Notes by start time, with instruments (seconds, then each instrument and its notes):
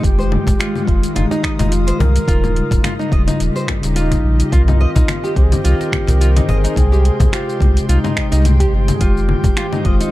Already playing: ambient pad G#3
0.02 sub bass F1, tine electric piano D#3 G#3, duduk G4, ambient pad F5 D#6, kick, closed hi-hat, shaker
0.06 tine electric piano F4
0.19 nylon-string guitar C5, shaker
0.32 low conga
0.47 sub bass F1, kick, cajon bass, closed hi-hat, shaker
0.59 nylon-string guitar F4, finger snap, closed hi-hat, shaker
0.76 low conga, shaker
0.85 sub bass F1, tine electric piano D#3 G#3, duduk F4, kick, closed hi-hat
0.89 tine electric piano G4
1.03 closed hi-hat, shaker
1.15 sub bass F1, duduk D#4, nylon-string guitar F4, closed hi-hat, low conga, shaker
1.31 nylon-string guitar D#4, cajon slap, shaker
1.43 nylon-string guitar D#5, finger snap, kick, closed hi-hat
1.56 sub bass F1, tine electric piano D#3 G#3, nylon-string guitar D#4, cajon bass, cajon slap, closed hi-hat, low conga, shaker
1.60 tine electric piano F4
1.70 duduk F4, closed hi-hat, shaker
1.87 nylon-string guitar C5, closed hi-hat, shaker
1.99 sub bass C2, duduk A#4, cajon bass, cajon slap, low conga
2.16 closed hi-hat, shaker
2.26 sub bass D#1, tine electric piano C#3 G3 D#4, nylon-string guitar F4, ambient pad G4 D#5, kick, closed hi-hat, shaker
2.44 low conga, shaker
2.56 closed hi-hat
2.71 sub bass D#1, kick, cajon bass, closed hi-hat, shaker
2.84 nylon-string guitar F4, finger snap, closed hi-hat, low conga, shaker
2.99 nylon-string guitar D#4, shaker
3.10 sub bass D#1, tine electric piano C#3 G3 F4, nylon-string guitar D#5, kick, closed hi-hat
3.27 nylon-string guitar D#4, closed hi-hat, low conga, shaker
3.40 sub bass D#1, closed hi-hat, shaker
3.56 nylon-string guitar C5, shaker
3.68 finger snap, kick, closed hi-hat, low conga
3.82 sub bass D#1, tine electric piano C#3 G3 D#4, cajon slap, closed hi-hat, shaker
3.96 duduk D#4, nylon-string guitar F4, closed hi-hat, shaker
4.11 kick, cajon slap, closed hi-hat, low conga, shaker
4.24 sub bass A#1
4.40 closed hi-hat, shaker
4.51 sub bass C2, tine electric piano D#3 C4 A#4, synth texture C4 C5, nylon-string guitar F4, duduk F4, ambient pad A#4 C6, kick, closed hi-hat, shaker
4.68 nylon-string guitar D#4, low conga, shaker
4.81 nylon-string guitar D#5
4.95 sub bass C2, nylon-string guitar D#4, kick, cajon bass, closed hi-hat, shaker
5.08 finger snap, closed hi-hat, low conga, shaker
5.24 nylon-string guitar G4, shaker
5.35 sub bass C2, tine electric piano D#3 C4, duduk G4, kick, closed hi-hat
5.39 tine electric piano C5
5.43 duduk G#4
5.52 duduk G4, closed hi-hat, low conga, shaker
5.64 sub bass C2, nylon-string guitar F4, closed hi-hat, shaker
5.81 cajon slap, shaker
5.92 finger snap, kick, closed hi-hat, low conga
6.06 sub bass C2, tine electric piano D#3 C4 A#4, cajon bass, cajon slap, closed hi-hat, shaker
6.21 nylon-string guitar F4, closed hi-hat, shaker
6.36 nylon-string guitar D#4, closed hi-hat, low conga, shaker
6.48 sub bass G1, duduk G#4, nylon-string guitar D#5, cajon bass, cajon slap
6.64 nylon-string guitar D#4, closed hi-hat, shaker
6.74 sub bass C2, tine electric piano C3 G#3, ambient pad G#3 G5, kick, closed hi-hat, low conga, shaker
6.79 tine electric piano G5
6.92 nylon-string guitar G4, shaker
7.05 closed hi-hat
7.20 sub bass C2, kick, cajon bass, closed hi-hat, low conga, shaker
7.32 nylon-string guitar F4, duduk G4, finger snap, closed hi-hat, shaker
7.49 shaker
7.59 sub bass C2, tine electric piano C3 G#3, kick, closed hi-hat, low conga
7.77 closed hi-hat, shaker
7.88 sub bass C2, duduk D#4, nylon-string guitar F4, closed hi-hat, shaker
8.04 nylon-string guitar D#4, low conga, shaker
8.16 nylon-string guitar D#5, finger snap, kick, closed hi-hat
8.30 sub bass C2, tine electric piano C3 G#3, nylon-string guitar D#4, cajon slap, closed hi-hat, shaker
8.34 tine electric piano G4
8.45 closed hi-hat, low conga, shaker
8.60 nylon-string guitar G4, kick, cajon slap, closed hi-hat, shaker
8.73 sub bass G1
8.88 closed hi-hat, low conga, shaker
8.95 duduk G#4
8.99 sub bass F1, tine electric piano D#3 G#3, nylon-string guitar F4, ambient pad F5 D#6, kick, closed hi-hat, shaker
9.03 tine electric piano F4, duduk G4
9.17 shaker
9.29 low conga
9.44 sub bass F1, cajon bass, kick, closed hi-hat, shaker
9.57 nylon-string guitar F4, finger snap, closed hi-hat, shaker
9.73 nylon-string guitar D#4, low conga, shaker
9.83 sub bass F1, tine electric piano D#3 G#3, duduk F4, nylon-string guitar D#5, kick, closed hi-hat
9.87 tine electric piano G4
10.00 nylon-string guitar D#4, closed hi-hat, shaker